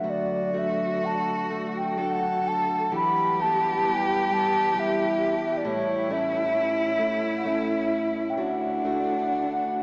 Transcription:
Already playing: F#3 A3 B3 E5
0.03 D2 D4 F#4 A4
0.10 D5
0.53 A3 D4 F#4
0.58 E5
1.03 D4 A5
1.50 A3
1.77 G5
1.97 A3 D4 F#4 A4
2.02 F#5
2.48 A5
2.91 E3 G3 E4 G4 B4
2.96 B5
3.39 G3 B3 G4 A5
3.85 B3 G5
4.31 G3 A5
4.74 G3 B3 G4
4.80 E5
5.45 E5
5.57 D5
5.64 A2 A3 E4 C#5
6.10 A3 C#4 E4 E5
6.55 C#4
6.99 A3
7.37 F#5
7.45 A3 C#4 E4 E5
8.30 G5
8.36 D2 D4 F#4 F#5
8.40 F#5
8.85 A3 D4 F#4
9.32 D4

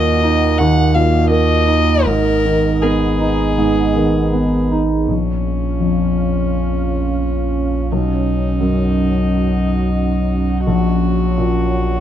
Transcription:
Already playing: D#2 A#2 A#3 F#4 D#5
0.23 D#4
0.58 D#2 F#5
0.94 A#2 F5
1.30 A#3 D#5
1.67 D#4
2.05 G#1 G#2 B3 G#4 A#4
2.45 D#3
2.82 B3 G#4
3.20 D#4
3.58 G#2
3.96 D#3
4.33 B3
4.72 D#4
5.07 A#1 C#4 F4 F5
5.80 F2
7.91 B1 D#4 F#4 D#5
8.61 F#2
10.66 A#1 C#4 F#4 C#5
11.38 A#2

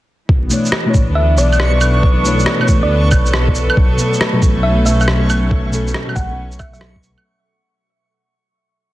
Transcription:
0.28 B1 E3 C#6, kick
0.46 B2 A3 B3
0.50 D4 E4 C#5, shaker
0.66 shaker
0.72 cross-stick
0.85 B2 A3 D4 E4
0.90 B4 C#5
0.94 A1, kick, shaker
1.09 D2 A4
1.15 E5
1.38 B1 D5, shaker
1.53 claves, shaker
1.60 cross-stick
1.81 claves, shaker
2.03 kick
2.23 B2 A3 D4 E4 C#5, shaker
2.39 shaker
2.46 cross-stick
2.59 B2 A3 D4 E4, claves
2.63 C#5
2.68 A1, kick, shaker
2.83 D2 D5
3.11 B1, kick, claves, shaker
3.26 shaker
3.34 cross-stick
3.48 kick
3.55 shaker
3.70 claves
3.77 B1 F#3, kick
3.96 B2 F#3 A3, shaker
4.01 A4
4.13 shaker
4.21 cross-stick
4.32 B2 F#3 C#4
4.36 A4
4.42 A1, kick, shaker
4.57 B1
4.63 E5
4.86 B1 E5, shaker
5.01 E5, claves, shaker
5.08 cross-stick
5.30 claves, shaker
5.51 kick
5.70 B2 F#3, shaker
5.74 A4
5.87 shaker
5.94 cross-stick
6.06 B2 F#3, claves
6.10 A4
6.16 A1 F#5, kick, shaker
6.31 B1
6.52 shaker
6.59 B1 E5, kick, claves, shaker
6.71 B2 F#3 E5, shaker
6.78 A4, cross-stick
6.96 kick
7.03 shaker
7.18 claves

